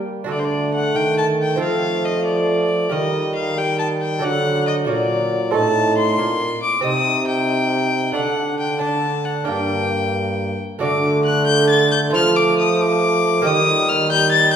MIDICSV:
0, 0, Header, 1, 5, 480
1, 0, Start_track
1, 0, Tempo, 438917
1, 301, Time_signature, 6, 3, 24, 8
1, 15921, End_track
2, 0, Start_track
2, 0, Title_t, "Violin"
2, 0, Program_c, 0, 40
2, 336, Note_on_c, 0, 74, 70
2, 426, Note_on_c, 0, 72, 61
2, 442, Note_off_c, 0, 74, 0
2, 489, Note_on_c, 0, 74, 76
2, 505, Note_off_c, 0, 72, 0
2, 801, Note_off_c, 0, 74, 0
2, 813, Note_on_c, 0, 78, 74
2, 1046, Note_on_c, 0, 79, 82
2, 1062, Note_off_c, 0, 78, 0
2, 1276, Note_off_c, 0, 79, 0
2, 1290, Note_on_c, 0, 81, 83
2, 1377, Note_off_c, 0, 81, 0
2, 1553, Note_on_c, 0, 79, 76
2, 1765, Note_off_c, 0, 79, 0
2, 1782, Note_on_c, 0, 77, 78
2, 2238, Note_on_c, 0, 75, 75
2, 2255, Note_off_c, 0, 77, 0
2, 2454, Note_off_c, 0, 75, 0
2, 2460, Note_on_c, 0, 74, 79
2, 3189, Note_on_c, 0, 75, 83
2, 3206, Note_off_c, 0, 74, 0
2, 3659, Note_off_c, 0, 75, 0
2, 3666, Note_on_c, 0, 77, 77
2, 3915, Note_on_c, 0, 79, 87
2, 3932, Note_off_c, 0, 77, 0
2, 4139, Note_off_c, 0, 79, 0
2, 4146, Note_on_c, 0, 81, 77
2, 4233, Note_off_c, 0, 81, 0
2, 4381, Note_on_c, 0, 79, 77
2, 4634, Note_on_c, 0, 78, 90
2, 4651, Note_off_c, 0, 79, 0
2, 5099, Note_off_c, 0, 78, 0
2, 5105, Note_on_c, 0, 75, 78
2, 5193, Note_off_c, 0, 75, 0
2, 5360, Note_on_c, 0, 74, 76
2, 6051, Note_off_c, 0, 74, 0
2, 6061, Note_on_c, 0, 81, 89
2, 6524, Note_off_c, 0, 81, 0
2, 6539, Note_on_c, 0, 84, 95
2, 7234, Note_off_c, 0, 84, 0
2, 7251, Note_on_c, 0, 86, 82
2, 7478, Note_off_c, 0, 86, 0
2, 7485, Note_on_c, 0, 87, 96
2, 7949, Note_off_c, 0, 87, 0
2, 7957, Note_on_c, 0, 79, 93
2, 8895, Note_off_c, 0, 79, 0
2, 8904, Note_on_c, 0, 78, 77
2, 9382, Note_off_c, 0, 78, 0
2, 9404, Note_on_c, 0, 79, 74
2, 9633, Note_off_c, 0, 79, 0
2, 9640, Note_on_c, 0, 81, 75
2, 10114, Note_on_c, 0, 78, 67
2, 10131, Note_off_c, 0, 81, 0
2, 10360, Note_off_c, 0, 78, 0
2, 10367, Note_on_c, 0, 79, 80
2, 11559, Note_off_c, 0, 79, 0
2, 11819, Note_on_c, 0, 86, 87
2, 12271, Note_off_c, 0, 86, 0
2, 12309, Note_on_c, 0, 90, 88
2, 12535, Note_off_c, 0, 90, 0
2, 12542, Note_on_c, 0, 91, 106
2, 12781, Note_off_c, 0, 91, 0
2, 12793, Note_on_c, 0, 93, 98
2, 13028, Note_off_c, 0, 93, 0
2, 13035, Note_on_c, 0, 91, 90
2, 13122, Note_off_c, 0, 91, 0
2, 13278, Note_on_c, 0, 89, 112
2, 13517, Note_on_c, 0, 86, 95
2, 13533, Note_off_c, 0, 89, 0
2, 13753, Note_off_c, 0, 86, 0
2, 13770, Note_on_c, 0, 87, 90
2, 14007, Note_on_c, 0, 86, 107
2, 14024, Note_off_c, 0, 87, 0
2, 14729, Note_on_c, 0, 87, 107
2, 14745, Note_off_c, 0, 86, 0
2, 15188, Note_on_c, 0, 89, 97
2, 15205, Note_off_c, 0, 87, 0
2, 15424, Note_off_c, 0, 89, 0
2, 15444, Note_on_c, 0, 91, 113
2, 15657, Note_off_c, 0, 91, 0
2, 15663, Note_on_c, 0, 93, 108
2, 15887, Note_off_c, 0, 93, 0
2, 15921, End_track
3, 0, Start_track
3, 0, Title_t, "Lute"
3, 0, Program_c, 1, 24
3, 0, Note_on_c, 1, 62, 44
3, 0, Note_on_c, 1, 67, 44
3, 0, Note_on_c, 1, 70, 48
3, 251, Note_off_c, 1, 62, 0
3, 263, Note_off_c, 1, 67, 0
3, 264, Note_on_c, 1, 62, 46
3, 265, Note_off_c, 1, 70, 0
3, 284, Note_on_c, 1, 66, 44
3, 298, Note_on_c, 1, 69, 45
3, 311, Note_on_c, 1, 50, 50
3, 986, Note_off_c, 1, 50, 0
3, 1039, Note_on_c, 1, 51, 45
3, 1684, Note_off_c, 1, 62, 0
3, 1694, Note_off_c, 1, 66, 0
3, 1702, Note_off_c, 1, 69, 0
3, 1705, Note_on_c, 1, 60, 46
3, 1709, Note_off_c, 1, 51, 0
3, 1720, Note_on_c, 1, 65, 43
3, 1729, Note_on_c, 1, 69, 47
3, 1741, Note_on_c, 1, 53, 50
3, 3121, Note_off_c, 1, 60, 0
3, 3129, Note_off_c, 1, 65, 0
3, 3133, Note_off_c, 1, 69, 0
3, 3139, Note_off_c, 1, 53, 0
3, 3164, Note_on_c, 1, 67, 46
3, 3177, Note_on_c, 1, 70, 44
3, 3189, Note_on_c, 1, 51, 49
3, 4568, Note_off_c, 1, 67, 0
3, 4574, Note_off_c, 1, 70, 0
3, 4580, Note_off_c, 1, 51, 0
3, 4582, Note_on_c, 1, 57, 47
3, 4598, Note_on_c, 1, 66, 45
3, 4611, Note_on_c, 1, 74, 47
3, 4625, Note_on_c, 1, 50, 52
3, 5286, Note_off_c, 1, 57, 0
3, 5296, Note_off_c, 1, 50, 0
3, 5300, Note_on_c, 1, 57, 41
3, 5304, Note_off_c, 1, 66, 0
3, 5311, Note_off_c, 1, 74, 0
3, 5318, Note_on_c, 1, 66, 46
3, 5325, Note_on_c, 1, 74, 47
3, 5341, Note_on_c, 1, 46, 51
3, 6012, Note_off_c, 1, 46, 0
3, 6013, Note_off_c, 1, 57, 0
3, 6022, Note_off_c, 1, 66, 0
3, 6023, Note_on_c, 1, 60, 48
3, 6026, Note_off_c, 1, 74, 0
3, 6033, Note_on_c, 1, 69, 47
3, 6051, Note_on_c, 1, 75, 45
3, 6059, Note_on_c, 1, 45, 52
3, 6727, Note_off_c, 1, 45, 0
3, 6762, Note_on_c, 1, 46, 50
3, 7185, Note_off_c, 1, 46, 0
3, 7423, Note_off_c, 1, 60, 0
3, 7428, Note_off_c, 1, 69, 0
3, 7437, Note_off_c, 1, 75, 0
3, 7446, Note_on_c, 1, 60, 50
3, 7461, Note_on_c, 1, 67, 45
3, 7477, Note_on_c, 1, 75, 49
3, 7484, Note_on_c, 1, 48, 49
3, 8854, Note_off_c, 1, 60, 0
3, 8861, Note_off_c, 1, 67, 0
3, 8870, Note_off_c, 1, 75, 0
3, 8872, Note_off_c, 1, 48, 0
3, 8881, Note_on_c, 1, 57, 47
3, 8894, Note_on_c, 1, 62, 45
3, 8907, Note_on_c, 1, 74, 46
3, 8921, Note_on_c, 1, 50, 53
3, 9589, Note_off_c, 1, 57, 0
3, 9603, Note_on_c, 1, 57, 43
3, 9606, Note_off_c, 1, 62, 0
3, 9613, Note_off_c, 1, 74, 0
3, 9618, Note_on_c, 1, 62, 41
3, 9629, Note_on_c, 1, 74, 42
3, 10323, Note_off_c, 1, 62, 0
3, 10323, Note_on_c, 1, 58, 42
3, 10327, Note_off_c, 1, 50, 0
3, 10327, Note_off_c, 1, 57, 0
3, 10336, Note_off_c, 1, 74, 0
3, 10336, Note_on_c, 1, 62, 41
3, 10349, Note_on_c, 1, 74, 43
3, 10360, Note_on_c, 1, 43, 46
3, 11537, Note_off_c, 1, 43, 0
3, 11761, Note_off_c, 1, 58, 0
3, 11768, Note_off_c, 1, 62, 0
3, 11774, Note_off_c, 1, 74, 0
3, 11797, Note_on_c, 1, 57, 49
3, 11811, Note_on_c, 1, 66, 49
3, 11822, Note_on_c, 1, 74, 57
3, 11837, Note_on_c, 1, 50, 59
3, 13213, Note_off_c, 1, 57, 0
3, 13220, Note_off_c, 1, 66, 0
3, 13225, Note_off_c, 1, 74, 0
3, 13233, Note_off_c, 1, 50, 0
3, 13233, Note_on_c, 1, 57, 59
3, 13245, Note_on_c, 1, 65, 55
3, 13263, Note_on_c, 1, 72, 55
3, 13277, Note_on_c, 1, 53, 62
3, 14641, Note_off_c, 1, 57, 0
3, 14646, Note_off_c, 1, 65, 0
3, 14656, Note_off_c, 1, 72, 0
3, 14662, Note_off_c, 1, 53, 0
3, 14672, Note_on_c, 1, 58, 62
3, 14690, Note_on_c, 1, 67, 54
3, 14704, Note_on_c, 1, 75, 57
3, 14717, Note_on_c, 1, 51, 66
3, 15921, Note_off_c, 1, 51, 0
3, 15921, Note_off_c, 1, 58, 0
3, 15921, Note_off_c, 1, 67, 0
3, 15921, Note_off_c, 1, 75, 0
3, 15921, End_track
4, 0, Start_track
4, 0, Title_t, "Bassoon"
4, 0, Program_c, 2, 70
4, 318, Note_on_c, 2, 57, 66
4, 1711, Note_off_c, 2, 57, 0
4, 1762, Note_on_c, 2, 57, 64
4, 3165, Note_off_c, 2, 57, 0
4, 3186, Note_on_c, 2, 55, 62
4, 3890, Note_off_c, 2, 55, 0
4, 3904, Note_on_c, 2, 55, 60
4, 4628, Note_on_c, 2, 54, 65
4, 4645, Note_off_c, 2, 55, 0
4, 5334, Note_off_c, 2, 54, 0
4, 5340, Note_on_c, 2, 54, 66
4, 6068, Note_on_c, 2, 63, 71
4, 6084, Note_off_c, 2, 54, 0
4, 7185, Note_off_c, 2, 63, 0
4, 7491, Note_on_c, 2, 63, 70
4, 8876, Note_off_c, 2, 63, 0
4, 8927, Note_on_c, 2, 62, 64
4, 9601, Note_off_c, 2, 62, 0
4, 9642, Note_on_c, 2, 62, 61
4, 10354, Note_off_c, 2, 62, 0
4, 10367, Note_on_c, 2, 58, 62
4, 11560, Note_off_c, 2, 58, 0
4, 11831, Note_on_c, 2, 57, 83
4, 13230, Note_off_c, 2, 57, 0
4, 13278, Note_on_c, 2, 57, 74
4, 14678, Note_off_c, 2, 57, 0
4, 14716, Note_on_c, 2, 55, 75
4, 15412, Note_off_c, 2, 55, 0
4, 15421, Note_on_c, 2, 55, 81
4, 15921, Note_off_c, 2, 55, 0
4, 15921, End_track
5, 0, Start_track
5, 0, Title_t, "Trombone"
5, 0, Program_c, 3, 57
5, 305, Note_on_c, 3, 50, 65
5, 1034, Note_on_c, 3, 51, 62
5, 1051, Note_off_c, 3, 50, 0
5, 1746, Note_off_c, 3, 51, 0
5, 1752, Note_on_c, 3, 53, 73
5, 3160, Note_off_c, 3, 53, 0
5, 3186, Note_on_c, 3, 51, 72
5, 4593, Note_off_c, 3, 51, 0
5, 4623, Note_on_c, 3, 50, 74
5, 5340, Note_on_c, 3, 46, 67
5, 5356, Note_off_c, 3, 50, 0
5, 6059, Note_on_c, 3, 45, 72
5, 6076, Note_off_c, 3, 46, 0
5, 6771, Note_on_c, 3, 46, 64
5, 6788, Note_off_c, 3, 45, 0
5, 7234, Note_off_c, 3, 46, 0
5, 7486, Note_on_c, 3, 48, 77
5, 8873, Note_off_c, 3, 48, 0
5, 8919, Note_on_c, 3, 50, 68
5, 10326, Note_off_c, 3, 50, 0
5, 10367, Note_on_c, 3, 43, 67
5, 11560, Note_off_c, 3, 43, 0
5, 11830, Note_on_c, 3, 50, 88
5, 13277, Note_on_c, 3, 53, 85
5, 13293, Note_off_c, 3, 50, 0
5, 14706, Note_off_c, 3, 53, 0
5, 14712, Note_on_c, 3, 51, 86
5, 15921, Note_off_c, 3, 51, 0
5, 15921, End_track
0, 0, End_of_file